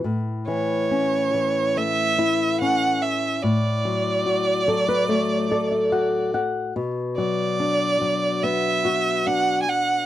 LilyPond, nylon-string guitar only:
\new Staff \with { instrumentName = "Nylon-string guitar" } { \time 4/4 \key a \major \tempo 4 = 72 << { r1 | r4. a'16 b'16 cis''8 d''16 e''16 fis''8 fis''8 | r1 | } \\ { a,8 e8 cis'8 e8 a8 e'8 cis'4 | a,8 fis8 fis'8 fis8 a8 a'8 fis'4 | b,8 fis8 d'8 fis8 b8 fis'8 d'4 | } >> }